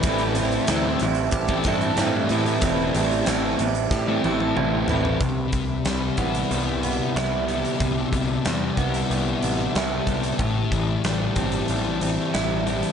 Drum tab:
HH |xxxxx-xxxxxxx-xx|x-xxx-xx--------|x-x-x-xxx-x-x-xx|x-x-x-xxx-x-x-xx|
SD |----o-------o---|----o---o-------|----o-------o---|----o-------o---|
T1 |----------------|----------oo----|----------------|----------------|
T2 |----------------|------------o---|----------------|----------------|
FT |----------------|--------------oo|----------------|----------------|
BD |o-------ooo-----|o-------o-------|o-o---o---------|o-o---o-------o-|

HH |x-x-x-xxx-x-x-xx|
SD |----o-------o---|
T1 |----------------|
T2 |----------------|
FT |----------------|
BD |o-o---o---------|